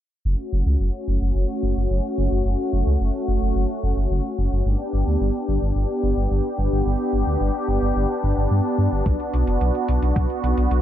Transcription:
0.25 detuned saw bass F#1, analog synth pad A3 C#4 F#4
0.53 detuned saw bass F#1
0.66 detuned saw bass C#2
0.80 detuned saw bass F#1
1.08 detuned saw bass F#1
1.22 detuned saw bass F#1
1.35 detuned saw bass F#1
1.63 detuned saw bass F#1
1.77 detuned saw bass F#1
1.90 detuned saw bass F#1
2.18 detuned saw bass F#1
2.32 detuned saw bass F#1
2.45 detuned saw bass F#1
2.73 detuned saw bass F#1
2.87 detuned saw bass C#2
3.00 detuned saw bass F#1
3.28 detuned saw bass F#1
3.42 detuned saw bass F#1
3.56 detuned saw bass F#1
3.83 detuned saw bass F#1
3.97 detuned saw bass F#1
4.11 detuned saw bass F#1
4.38 detuned saw bass F#1
4.52 detuned saw bass F#1
4.66 detuned saw bass G1, analog synth pad B3 D4 G4
4.93 detuned saw bass G1
5.07 detuned saw bass D2
5.21 detuned saw bass G1
5.48 detuned saw bass G1
5.62 detuned saw bass G1
5.76 detuned saw bass G1
6.03 detuned saw bass G1
6.17 detuned saw bass G1
6.31 detuned saw bass G1
6.58 detuned saw bass G1
6.72 detuned saw bass G1
6.86 detuned saw bass G1
7.13 detuned saw bass G1
7.27 detuned saw bass D2
7.41 detuned saw bass G1
7.68 detuned saw bass G1
7.82 detuned saw bass G1
7.96 detuned saw bass G1
8.23 detuned saw bass G1
8.37 detuned saw bass G1
8.51 detuned saw bass G2
8.78 detuned saw bass G2
8.92 detuned saw bass G1
9.06 detuned saw bass B1, analog synth pad F#4, kick, closed hi-hat
9.20 closed hi-hat
9.33 detuned saw bass B1, closed hi-hat
9.47 detuned saw bass F#1, closed hi-hat
9.61 detuned saw bass B1, closed hi-hat
9.75 closed hi-hat
9.88 detuned saw bass B1, closed hi-hat
10.02 detuned saw bass B1, closed hi-hat
10.16 detuned saw bass B1, kick, closed hi-hat
10.30 closed hi-hat
10.44 detuned saw bass B1, closed hi-hat
10.57 detuned saw bass B1, closed hi-hat
10.71 detuned saw bass B1, closed hi-hat

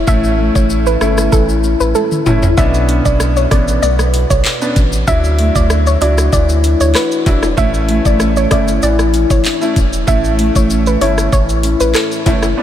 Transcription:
Already playing: nylon-string guitar E3 A3 C#4 E4
0.07 sub bass A1, nylon-string guitar A2, grand piano A3 C#4 E4, synth pluck E5, kick, maracas
0.24 maracas
0.39 nylon-string guitar A3
0.55 sub bass A1, synth pluck C#5, kick, maracas
0.70 nylon-string guitar C#4, maracas
0.86 synth pluck B4, maracas
1.01 sub bass G1, grand piano A3 C#4 E4, nylon-string guitar E4, synth pluck A4, cross-stick, maracas
1.18 cross-stick, maracas
1.32 sub bass A1, nylon-string guitar E3, synth pluck A4, kick, maracas
1.49 maracas
1.64 nylon-string guitar C#4, maracas
1.80 sub bass A1, synth pluck B4, maracas
1.95 nylon-string guitar E4, synth pluck A4, high tom, maracas
2.12 mid tom, maracas
2.26 sub bass F#1, grand piano A3 C#4 E4, nylon-string guitar C#4, mid tom, high timbale, maracas
2.43 floor tom, high timbale, maracas
2.57 sub bass B1, nylon-string guitar B2, grand piano B3 C#4 D4, synth pluck E5, kick, maracas, shaker
2.74 maracas, shaker
2.89 nylon-string guitar D4, closed hi-hat, shaker
3.05 sub bass B1, synth pluck D5, kick, shaker, maracas
3.20 nylon-string guitar E4, cross-stick, shaker, maracas
3.36 nylon-string guitar F#4, synth pluck C#5, shaker, maracas
3.51 sub bass A1, grand piano B3 C#4 D4, nylon-string guitar C#5, synth pluck D5, kick, cross-stick, closed hi-hat, maracas, shaker
3.68 maracas, shaker
3.82 sub bass B1, nylon-string guitar B3, synth pluck D5, maracas, shaker
3.99 cross-stick, maracas, shaker
4.14 nylon-string guitar F#4, closed hi-hat, shaker, maracas
4.30 sub bass B1, synth pluck C#5, kick, shaker, maracas
4.45 nylon-string guitar C#5, clap, shaker, maracas
4.61 grand piano B3 C#4 D4, shaker, maracas
4.76 sub bass A1, nylon-string guitar F#4, kick, closed hi-hat, shaker, maracas
4.93 maracas, shaker
5.07 sub bass D2, grand piano F#3 D4 E4, synth pluck E5, kick, shaker, maracas
5.24 maracas, shaker
5.39 nylon-string guitar A3, closed hi-hat, shaker
5.55 sub bass D2, synth pluck D5, kick, shaker, maracas
5.70 nylon-string guitar D4, cross-stick, maracas, shaker
5.86 synth pluck C#5, shaker, maracas
6.01 sub bass C#2, grand piano F#3 D4 E4, nylon-string guitar F#4, synth pluck D5, closed hi-hat, maracas, shaker
6.18 cross-stick, maracas, shaker
6.33 sub bass D2, nylon-string guitar E3, synth pluck D5, kick, maracas, shaker
6.49 maracas, shaker
6.64 nylon-string guitar D4, closed hi-hat, shaker, maracas
6.80 sub bass D2, synth pluck C#5, shaker, maracas
6.95 nylon-string guitar F#4, synth pluck B4, cross-stick, clap, shaker, maracas
7.11 shaker, maracas
7.26 sub bass E1, grand piano F#3 D4 E4, nylon-string guitar D4, kick, closed hi-hat, high timbale, shaker, maracas
7.43 cross-stick, high timbale, maracas, shaker
7.57 sub bass A1, nylon-string guitar A2, grand piano A3 C#4 E4, synth pluck E5, kick, shaker, maracas
7.74 maracas, shaker
7.89 nylon-string guitar A3, closed hi-hat, shaker
8.05 sub bass A1, synth pluck D5, kick, shaker, maracas
8.20 nylon-string guitar C#4, cross-stick, maracas, shaker
8.36 synth pluck C#5, shaker, maracas
8.51 sub bass G1, grand piano A3 C#4 E4, nylon-string guitar E4, synth pluck D5, kick, cross-stick, closed hi-hat, maracas, shaker
8.68 shaker, maracas
8.82 sub bass A1, nylon-string guitar E3, synth pluck D5, maracas, shaker
8.99 cross-stick, shaker, maracas
9.14 nylon-string guitar C#4, closed hi-hat, shaker, maracas
9.30 sub bass A1, synth pluck C#5, kick, shaker, maracas
9.45 nylon-string guitar D4, clap, shaker, maracas
9.61 grand piano A3 C#4 E4, nylon-string guitar E4, shaker, maracas
9.76 sub bass E1, nylon-string guitar C#4, kick, closed hi-hat, shaker, maracas
9.93 maracas, shaker
10.07 sub bass A1, nylon-string guitar A2, grand piano A3 C#4 E4, synth pluck E5, kick, shaker, maracas
10.24 maracas, shaker
10.39 nylon-string guitar A3, closed hi-hat, shaker
10.55 sub bass A1, synth pluck C#5, kick, shaker, maracas
10.70 nylon-string guitar C#4, shaker, maracas
10.86 synth pluck B4, shaker, maracas
11.01 sub bass G1, grand piano A3 C#4 E4, nylon-string guitar E4, synth pluck C#5, closed hi-hat, shaker, maracas
11.18 cross-stick, shaker, maracas
11.33 sub bass A1, nylon-string guitar E3, synth pluck C#5, kick, shaker, maracas
11.49 shaker, maracas
11.63 nylon-string guitar C#4, closed hi-hat, shaker, maracas
11.80 sub bass A1, synth pluck B4, shaker, maracas
11.95 nylon-string guitar E4, synth pluck A4, cross-stick, clap, shaker, maracas
12.11 shaker, maracas
12.26 sub bass F#1, grand piano A3 C#4 E4, nylon-string guitar C#4, kick, closed hi-hat, high timbale, shaker, maracas
12.43 cross-stick, high timbale, maracas, shaker
12.57 grand piano B3 C#4 D4

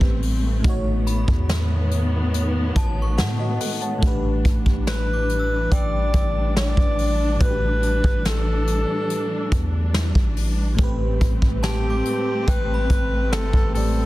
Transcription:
Already playing: fm electric piano A2 A3 B3 C4 G4 B4, string section G3 A3 C4, synth bell E6 G6
0.01 808-style bass A1, kick
0.22 open hi-hat
0.60 fm electric piano A2 A3
0.64 808-style bass A1, string section D#3 B3, fm electric piano D#4 F#4, kick, closed hi-hat
0.69 fm electric piano C#5
1.07 synth bell B5, closed hi-hat
1.28 808-style bass E2, kick
1.49 snare, closed hi-hat
1.91 closed hi-hat
2.34 closed hi-hat
2.76 808-style bass A1, synth bell A5, kick, closed hi-hat
3.02 synth bell C#6
3.18 808-style bass A2, synth bell F#5, snare, closed hi-hat
3.40 fm electric piano F#4 D#5
3.60 fm electric piano A4 F#5, closed hi-hat, open hi-hat
3.82 fm electric piano C#5 A5, closed hi-hat
3.98 fm electric piano A2 A3
4.02 808-style bass A1, string section E3 G3 D4, fm electric piano D4 G4, kick, closed hi-hat
4.07 fm electric piano B4
4.45 808-style bass A1, kick, closed hi-hat
4.66 kick
4.87 alto saxophone B4, synth bell B5, snare, closed hi-hat
5.13 synth bell D6
5.29 closed hi-hat
5.39 synth bell E6
5.72 808-style bass A1, alto saxophone D5, synth bell G5, kick, closed hi-hat
6.13 808-style bass A1, kick, closed hi-hat
6.56 alto saxophone D5, snare, closed hi-hat
6.77 808-style bass A1, kick
6.98 open hi-hat
7.36 fm electric piano A2 A3
7.41 808-style bass A1, fm electric piano D4 F#4, alto saxophone B4, kick, closed hi-hat
7.45 fm electric piano B4
7.50 fm electric piano G4
7.83 closed hi-hat
8.04 808-style bass A1, kick
8.25 alto saxophone A4, snare, closed hi-hat
8.67 closed hi-hat
9.10 closed hi-hat
9.52 808-style bass E2, kick, closed hi-hat
9.94 snare, closed hi-hat
10.15 808-style bass A1, kick
10.37 open hi-hat
10.75 fm electric piano A2 A3, kick, closed hi-hat
10.79 808-style bass A1, string section A3 C4, fm electric piano C4 G4
10.83 fm electric piano B4
11.21 808-style bass A1, kick, closed hi-hat
11.42 kick
11.63 alto saxophone G4, synth bell A5, snare, closed hi-hat
11.90 synth bell D6
12.05 closed hi-hat
12.48 808-style bass A1, alto saxophone B4, synth bell G5, kick, closed hi-hat
12.74 synth bell B5
12.90 808-style bass A1, kick, closed hi-hat
13.33 808-style bass G1, alto saxophone A4, snare, closed hi-hat
13.53 808-style bass A1, kick
13.73 fm electric piano A2 A3 C4 G4, alto saxophone A4, open hi-hat
13.77 fm electric piano D5

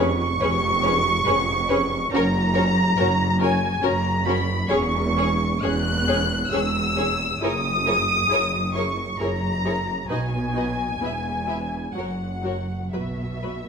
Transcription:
Already playing: double bass section F1, cello section F2, violin section C#6
0.41 double bass section F1, cello section F2, viola section C#4 G#4, violin section B4 C#5
0.83 viola section C#4 G#4, violin section B4 C#5
1.26 double bass section F1, cello section F2, viola section C#4 G#4, violin section B4 C#5
1.69 viola section C#4 G#4, violin section B4 C#5
2.12 double bass section F#1, cello section F#2, viola section C#4 F#4, violin section A#4 C#5 A#5
2.55 viola section C#4 F#4, violin section A#4 C#5
2.98 double bass section F#1, cello section F#2, viola section C#4 F#4, violin section A#4 C#5
3.40 viola section C#4 F#4, violin section A#4 C#5 G#5
3.82 double bass section F#1, cello section F#2, viola section C#4 F#4, violin section A#4 C#5 A#5
4.26 viola section C#4 F#4, violin section A#4 C#5 B5
4.70 double bass section E1, cello section E2, viola section C#4 G#4, violin section G#4 C#5 C#6
5.16 viola section C#4 G#4, violin section G#4 C#5
5.63 double bass section E1, cello section E2, viola section C#4 G#4, violin section G#4 C#5 F#6
6.08 viola section C#4 G#4, violin section G#4 C#5
6.50 double bass section E1, cello section E2, viola section C#4 G#4, violin section G#4 C#5 E6
6.96 viola section C#4 G#4, violin section G#4 C#5
7.41 double bass section F#1, cello section F#2, viola section E4 G#4, violin section A#4 C#5 D#6
7.86 viola section E4 G#4, violin section A#4 C#5
8.29 double bass section F#1, cello section F#2, viola section E4 G#4, violin section A#4 C#5
8.73 viola section E4 G#4, violin section A#4 C#5 C#6
9.19 double bass section F#1, cello section F#2, viola section E4 G#4, violin section A#4 C#5 A#5
9.64 viola section E4 G#4, violin section A#4 C#5
10.09 double bass section B1, cello section B2, viola section D#4 F#4, violin section B4 D#5 G#5
10.54 viola section D#4 F#4, violin section B4 D#5
10.99 double bass section E1, cello section E2, viola section B3 E4
11.04 violin section B4 E5
11.48 viola section B3 E4, violin section B4 E5
11.93 double bass section F#1, cello section F#2, viola section F#3 F#4, violin section F#5
11.99 violin section A#4 C#5
12.43 viola section F#3 F#4, violin section A#4 C#5
12.93 double bass section B1, cello section B2, viola section F#3 F#4, violin section B4 E5
13.43 viola section F#3 F#4, violin section B4

